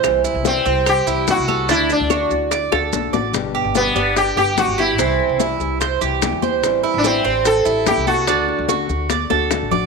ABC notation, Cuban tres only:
X:1
M:4/4
L:1/8
Q:1/4=146
K:G
V:1 name="Cuban tres"
c E2 C2 E2 A | D2 F2 d A2 d | z G2 D2 G2 G | C2 E2 c G2 c- |
c E2 C2 E2 A | D2 F2 d A2 d |]